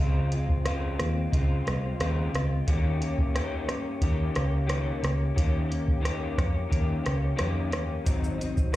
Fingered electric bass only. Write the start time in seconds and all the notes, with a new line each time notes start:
0.00 C#2
1.00 D#2
1.33 C#2
1.67 C2
2.00 D#2
2.34 C#2
2.68 D#2
3.69 G2
4.02 D#2
4.36 C#2
5.03 C#2
5.37 D#2
6.38 F2
6.72 D#2
7.06 C#2
7.40 F2
7.74 D#2
8.07 G#1